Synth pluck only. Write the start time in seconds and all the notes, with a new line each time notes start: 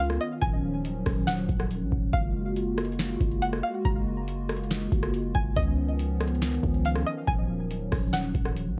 0.00 F5
0.21 D#5
0.42 G#5
1.27 F#5
2.13 F5
3.42 F#5
3.63 F5
3.85 A#5
5.35 G#5
5.56 D#5
6.85 F5
7.06 D#5
7.27 G#5
8.13 F#5